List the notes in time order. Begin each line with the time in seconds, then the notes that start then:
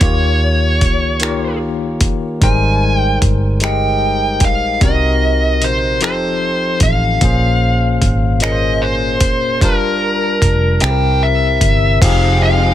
0.01 D#2 D#3 A#3 F4 G4 C#5, kick, closed hi-hat
0.05 C#5
0.81 C#2, kick, closed hi-hat
1.20 D#3 A#3 F4 G4, finger snap, closed hi-hat
1.25 A#4
2.01 G1, kick, closed hi-hat
2.41 G#1 G3 G#3 D#4 A#4 G#5, kick, closed hi-hat
2.45 C5
2.94 G5
3.22 G1, kick, closed hi-hat
3.60 G#3 D#4 G4 A#4 G5, finger snap, closed hi-hat
3.65 D#5
4.40 A#1, kick, closed hi-hat
4.45 F5
4.81 C2 C3 C4 C#4 F#4 A#4 D#5, kick, closed hi-hat
4.90 D#4
5.62 A#1 C5, closed hi-hat
6.01 F1 F3 C4 D#4 G4 A4 C5, finger snap, closed hi-hat
6.80 A1 F5, kick, closed hi-hat
7.21 A#1 A#2 A#3 C#4 G#4, kick, closed hi-hat
7.25 C5
8.02 G#1, kick, closed hi-hat
8.40 A#2 A#3 C#4 D#5, finger snap, closed hi-hat
8.44 G#4 A#4
8.52 C5
8.82 C5
9.20 F1, kick, closed hi-hat
9.61 G1 G3 D4 F4 A#4 A5, kick, closed hi-hat
10.42 F1, kick, closed hi-hat
10.80 C2 C3 C4 E4 G4 G5, finger snap, closed hi-hat
10.85 G#4
10.91 A#4
11.23 E5
11.61 G1, kick, closed hi-hat
12.01 F1 F3 G#3 C4 D#4 G4 F5 G5, kick, closed hi-hat, crash
12.05 G#4
12.43 F5